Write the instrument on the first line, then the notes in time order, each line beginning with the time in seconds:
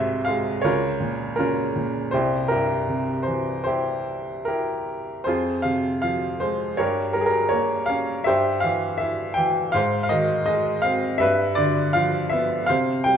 upright piano
Already playing: C2 G#2 C3 F4 G#4 C5 C#5 E5
0.25 G#3 F5
0.62 C#2 F4 A#4 C#5
1.00 A#2
1.36 C#3 C#4 F4 A#4
1.76 A#2
2.11 C2 E4 G4 C5
2.48 G2 E4 G4 A#4
2.88 C3
3.23 C5
3.27 E3
3.64 E4 G4 C5
4.45 E4 G4 A#4
5.24 F2 F4 G#4 C5
5.62 C3 F5
6.02 F3 F5
6.40 G#3 C5
6.77 G2 G4 A#4 C#5
7.13 G3 A#4
7.21 G#4
7.26 A#4
7.49 A#3 C#5
7.86 C#4 F5
8.24 G2 G4 C5 E5
8.60 E3 F5
8.98 E4 E5
9.34 E3 G5
9.72 G#2 C5 F5
10.03 F5
10.09 D#3 D#5
10.46 G#3 D#5
10.82 C4 F5
11.18 G2 B4 E5
11.55 D3 D5
11.93 F3 F5
12.29 B3 E5
12.66 C3 C5 F5
13.04 G3 G5